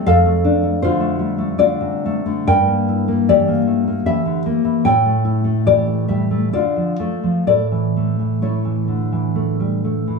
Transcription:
\new Staff \with { instrumentName = "Nylon-string guitar" } { \time 3/4 \key d \minor \tempo 4 = 72 << { <a' f''>4 <f' c''>4 <f' d''>4 | <bes' g''>4 <g' d''>4 <g' e''>4 | <cis'' g''>4 <g' d''>8 <g' e''>8 <f' d''>4 | <a' d''>4 <e' cis''>4 r4 | } \\ { f,16 a16 d'16 a16 d16 a16 g16 a16 d16 c16 a16 d16 | g,16 bes16 e'16 bes16 e16 bes16 a16 bes16 e16 d16 bes16 e16 | a,16 a16 e'16 a16 e16 a16 g16 a16 d16 f16 a16 f16 | a,16 e16 a16 e16 a16 e16 d16 e16 a16 g16 a16 e16 | } >> }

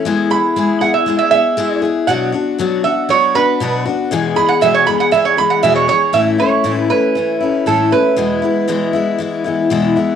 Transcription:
<<
  \new Staff \with { instrumentName = "Resonator guitar played with a steel bar" } { \time 4/4 \key a \major \tempo 4 = 118 r8 b''4 fis''16 e''8 e''16 e''4 r8 | fis''4. e''8 cis''8 b'4 r8 | r8 b''16 fis''16 e''16 cis''16 b''16 fis''16 e''16 cis''16 b''16 fis''16 e''16 cis''16 cis''8 | e''8 cis''4 b'4. a'8 b'8~ |
b'2.~ b'8 r8 | }
  \new Staff \with { instrumentName = "Steel-string acoustic guitar" } { \time 4/4 \key a \major <gis b e' gis'>8 <b e' gis'>8 <gis b e' gis'>8 <b e' gis'>8 <gis b e' gis'>8 <b e' gis'>8 <gis b e' gis'>8 <b e' gis'>8 | <b, fis b d' fis'>8 <b d' fis'>8 <b, fis b d' fis'>8 <b d' fis'>8 <fis b d' fis'>8 <b d' fis'>8 <b, fis b d' fis'>8 <b d' fis'>8 | <e, b, e gis b gis'>8 <e gis b gis'>8 <e, b, e gis b gis'>8 <e gis b gis'>8 <e gis b gis'>8 <e gis b gis'>8 <e, b, e gis b gis'>8 <e gis b gis'>8 | <a, e a cis' e'>8 <a cis' e'>8 <a, e a cis' e'>8 <a cis' e'>8 <e a cis' e'>8 <a cis' e'>8 <a, e a cis' e'>8 <a cis' e'>8 |
<e, b, e gis b e'>8 <e gis b e'>8 <e, b, e gis b e'>8 <e gis b e'>8 <e gis b e'>8 <e gis b e'>8 <e, b, e gis b e'>8 <e gis b e'>8 | }
>>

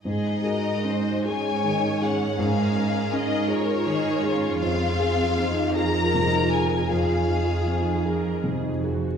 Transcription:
<<
  \new Staff \with { instrumentName = "Violin section" } { \time 6/8 \key aes \mixolydian \tempo 4. = 52 ees''4. aes''4 ges''8 | f''4 ees''8 des''4. | f''4. bes''4 aes''8 | f''4. r4. | }
  \new Staff \with { instrumentName = "Violin section" } { \time 6/8 \key aes \mixolydian aes'8 bes'8 c''8 des''4. | aes'4. bes'8 aes'8 f'8~ | f'4. bes'4. | aes'2~ aes'16 r8. | }
  \new Staff \with { instrumentName = "Viola section" } { \time 6/8 \key aes \mixolydian << { aes'8 ges'8 ges'8 aes'4. | bes'2. | aes'2. | aes'4. bes'8 aes'8 ges'8 | } \\ { ees'4. des'4.~ | des'4. f'8 ees'8 des'8 | c'4. f'4. | f'4. r4. | } >> }
  \new Staff \with { instrumentName = "Harp" } { \time 6/8 \key aes \mixolydian aes,8 aes'8 ees'8 aes'8 ees'8 des'8 | aes,8 aes'8 ees'8 aes'8 ees'8 des'8 | f,8 aes'8 ees'8 aes'8 ees'8 c'8 | f,8 aes'8 ees'8 aes'8 ees'8 c'8 | }
  \new Staff \with { instrumentName = "Felt piano" } { \time 6/8 \key aes \mixolydian aes,8 aes'8 des'8 aes'8 ees8 aes'8 | aes,8 ees'8 des'8 aes'8 ees8 aes'8 | f,8 aes'8 c'8 aes'8 c8 aes'8 | f,8 ees'8 c'8 aes'8 c8 aes'8 | }
  \new Staff \with { instrumentName = "Cello section" } { \clef bass \time 6/8 \key aes \mixolydian aes,2.~ | aes,2. | f,2.~ | f,2~ f,8. r16 | }
>>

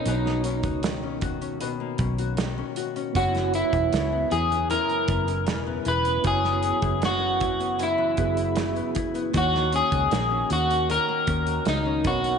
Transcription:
<<
  \new Staff \with { instrumentName = "Clean electric guitar" } { \time 4/4 \key fis \mixolydian \tempo 4 = 78 dis'8 r2. r8 | fis'8 e'4 gis'8 ais'4. b'8 | gis'4 fis'4 e'4. r8 | fis'8 gis'4 fis'8 ais'4 dis'8 fis'8 | }
  \new Staff \with { instrumentName = "Reed electric piano" } { \time 4/4 \key fis \mixolydian <b dis' ais' cis''>2.~ <b dis' ais' cis''>8 r8 | <b e' fis' cis''>1 | <b e' fis' cis''>2~ <b e' fis' cis''>8 <b e' fis' gis'>4. | <ais dis' fis' cis''>2.~ <ais dis' fis' cis''>8 <b dis' ais' cis''>8 | }
  \new Staff \with { instrumentName = "Nylon-string guitar" } { \time 4/4 \key fis \mixolydian <b, cis' fis'>16 ais16 cis'16 fis'16 dis16 cis'16 fis'16 cis'16 <b, fis'>16 ais16 cis'16 fis'16 dis16 cis'16 fis'16 cis'16 | <fis, e'>16 e16 b16 e'16 cis16 b16 e'16 b16 <fis, e'>16 e16 b16 e'16 cis16 b16 e'16 b16 | <fis, e'>16 e16 b16 e'16 cis16 b16 e'16 b16 <fis, e'>16 e16 b16 e'16 cis16 b16 e'16 b16 | <dis fis'>16 ais16 cis'16 fis'16 ais16 cis'16 fis'16 cis'16 <dis fis'>16 ais16 cis'16 fis'16 ais16 cis'16 b,16 cis'16 | }
  \new Staff \with { instrumentName = "Fingered electric bass" } { \clef bass \time 4/4 \key fis \mixolydian b,,8. cis,4. r16 b,,4 r8 | fis,,8. e,,16 cis,8 e,8. r16 fis,,8 e,,8 e,,8 | fis,,8. fis,,4. r16 fis,,4 r8 | dis,8. cis,16 ais,,8 dis,8. r16 dis,8 cis,8 b,,8 | }
  \new DrumStaff \with { instrumentName = "Drums" } \drummode { \time 4/4 hh16 sn16 hh16 <hh bd>16 <hh sn>8 <hh bd>16 hh16 hh8 <hh bd>16 hh16 <hh sn>8 hh16 hh16 | <hh bd>16 <hh sn>16 hh16 <hh bd>16 <hh sn>8 hh16 hh16 hh16 hh16 <hh bd>16 hh16 <hh sn>8 hh16 hh16 | <hh bd>16 sn16 hh16 <hh bd>16 <hh sn>8 <hh bd>16 hh16 hh8 <hh bd>16 hh16 <hh sn>16 hh16 <hh bd>16 hh16 | <hh bd>16 sn16 hh16 <hh bd>16 <hh sn>8 hh16 hh16 hh8 <hh bd>16 hh16 <hh sn>8 <hh bd>16 hh16 | }
>>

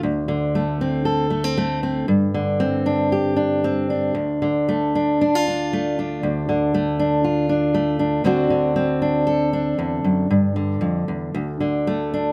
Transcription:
\new Staff \with { instrumentName = "Steel-string acoustic guitar" } { \time 4/4 \key d \minor \tempo 4 = 117 << { r4 a8 c'8 a'8 a16 c'16 a8 c'8 | r4 c'8 d'8 g'8 d'8 c'8 d'8 | r4 a8 d'8 d'16 f'16 d'8 a8 d'8 | r4 a8 d'8 f'8 d'8 a8 d'8 |
<d c' d' fis'>4 c'8 d'8 a'8 d'4. | r2. a8 d'8 | } \\ { <d, d>8 d2.~ d8 | g,8 d2.~ d8 | d,8 d2.~ d8 | d,8 d2.~ d8 |
d,8 d2~ d8 e,8 fis,8 | g,8 d8 f,8 e,8 d,8 d4. | } >> }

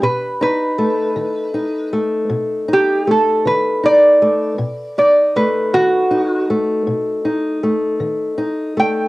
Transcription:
<<
  \new Staff \with { instrumentName = "Resonator guitar played with a steel bar" } { \time 12/8 \key b \dorian \tempo 4. = 53 b'8 b'2 r4 g'8 a'8 b'8 d''4~ | d''8 d''8 b'8 fis'4 r2. g''8 | }
  \new Staff \with { instrumentName = "Steel-string acoustic guitar" } { \time 12/8 \key b \dorian << { r8 dis'8 a4 dis'8 a4 dis'8 a4 dis'8 a8 | r8 dis'8 a4 dis'8 a4 dis'8 a4 dis'8 a8 | } \\ { b,4 r8 dis4 r8 b,4 r8 dis4 r8 | b,4 r8 dis4 r8 b,4 r8 dis4 r8 | } >> }
>>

